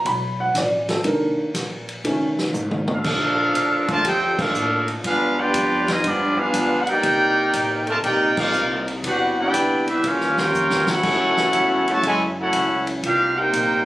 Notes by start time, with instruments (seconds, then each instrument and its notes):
0.05 upright bass B1, upright piano B5, kick, ride
0.40 upright piano F#5
0.54 upright bass A1, upright piano D5, kick, snare, hi-hat pedal, ride
0.89 upright piano A4, snare, ride
1.04 upright bass C2, upright piano D#3 A#3 D4 A#4, kick, ride
1.38 muted upright bass stroke
1.54 upright bass A#1, kick, snare, hi-hat pedal, ride
1.89 ride
2.04 upright bass F1, upright piano D#3 A3 C#4, kick, ride
2.39 snare
2.53 upright bass G#1, hi-hat pedal, mid tom
2.71 mid tom
2.88 trombone section F3 D4 F4, mid tom
2.93 trumpet section D4 A4 A#4 F5
3.04 upright bass A#1, trombone section D3 F3 D4 F4, kick, crash
3.54 upright bass D2, kick, hi-hat pedal, ride
3.88 trombone section D3 F3 A3, trumpet section F4 A#4 D5 A5, kick, ride
4.04 upright bass F2, trumpet section D#4 A4 C5 G5, trombone section G4, kick, ride
4.39 trombone section A#3 D4 F4, trumpet section D4 A4 A#4 F5, kick, crash
4.55 upright bass A2, hi-hat pedal
4.88 ride
5.04 upright bass G2, trombone section F3 G3 G#3 B3 D4 F4, trumpet section D4 G#4 B4 F5, kick, ride
5.39 trombone section B3 D4 G4, trumpet section F4 B4 D5 G5
5.54 upright bass F2, kick, hi-hat pedal, ride
5.88 trumpet section C4 F4 G#4 D#5, trombone section D#4, snare, ride
6.04 upright bass G2, trombone section F3 B3 D4, trumpet section B3 F4 G#4 D5, kick, ride
6.38 trombone section B3 D4 F4, trumpet section D4 G#4 B4 F5, muted upright bass stroke
6.53 upright bass D2, kick, hi-hat pedal, ride
6.81 trumpet section F#5
6.87 trombone section A#3 D#4 G4, trumpet section D#4 A#4 D5 G5, ride
7.03 upright bass C2, trombone section C3 A#3 C4 D#4, kick, ride
7.53 upright bass A1, kick, hi-hat pedal, ride
7.87 trombone section A3, trumpet section F4 A#4 D5 A5, ride
8.03 upright bass A#1, trombone section A#3 D#4 G4, trumpet section D#4 A#4 D5 G5, kick, ride
8.37 trombone section G3 A#3 F4, trumpet section D#4 A#4 D5 F5, kick, crash
8.53 upright bass C2, hi-hat pedal
8.88 ride
9.03 upright bass E2, trombone section G3 B3 E4 F#4, trumpet section D4 B4 F#5, kick, ride
9.07 trumpet section G4
9.40 trombone section B3 D4 G4, trumpet section E4 B4 D5 G5
9.53 upright bass D2, kick, hi-hat pedal, ride
9.88 trombone section G3 B3 E4, trumpet section D4 G4 B4 E5, ride
10.03 upright bass D#2, trombone section D#3 A#3 C#4 F4, trumpet section C#4 G4 A#4 F5, kick, ride
10.21 snare
10.37 trombone section A#3 C#4 G4, trumpet section F4 A#4 C#5 G5, snare
10.53 upright bass F2, hi-hat pedal
10.70 snare
10.87 trombone section A3 C#4 F#4, trumpet section E4 C#5, muted upright bass stroke, snare
10.91 trumpet section A4 F#5
11.03 upright bass D2, trombone section C#3 F#3 C#4 E4, kick, crash
11.37 snare
11.53 upright bass E2, kick, hi-hat pedal, ride
11.88 trombone section C#3 F#3 A3, trumpet section F#4 C#5 E5 A5, ride
12.03 upright bass F#2, trombone section G#3, kick, ride
12.07 trumpet section E4 A4 C#5 G#5
12.39 trombone section A3 C#4 F#4, trumpet section E4 A4 C#5 F#5
12.52 upright bass C#2, kick, hi-hat pedal, ride
12.87 ride
13.03 upright bass C2, trombone section C3 G3 A#3 D#4 F4, trumpet section D4 G4 A#4 F5, kick, ride
13.36 trombone section A#3 D#4 G4, trumpet section D#4 A#4 C5 G5
13.53 upright bass A#1, kick, hi-hat pedal, ride